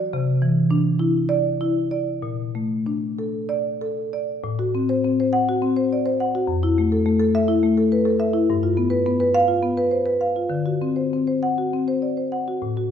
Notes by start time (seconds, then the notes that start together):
Already playing: D5
0.13 C3
0.42 E3
0.71 D4
0.99 E4
1.29 D5
1.61 E4
1.91 D5
2.22 A#2
2.55 A3
2.86 D4
3.19 A4
3.49 D5
3.81 A4
4.13 D5
4.44 A2
4.59 F#4
4.75 C4
4.89 C5
5.04 C4
5.20 C5
5.33 F#5
5.49 F#4
5.62 C4
5.76 C5
5.93 D5
6.06 C5
6.20 F#5
6.35 F#4
6.47 F2
6.63 E4
6.78 A3
6.92 A4
7.06 A3
7.20 A4
7.35 E5
7.48 E4
7.63 A3
7.78 A4
7.92 B4
8.05 A4
8.20 E5
8.34 E4
8.50 G2
8.63 F4
8.77 B3
8.90 B4
9.06 B3
9.20 B4
9.35 F5
9.48 F4
9.62 B3
9.77 B4
9.91 C5
10.06 B4
10.21 F5
10.36 F4
10.50 D3
10.66 F#4
10.82 C4
10.96 C5
11.13 C4
11.27 C5
11.43 F#5
11.58 F#4
11.73 C4
11.88 C5
12.02 D5
12.17 C5
12.32 F#5
12.48 F#4
12.62 A2
12.77 F#4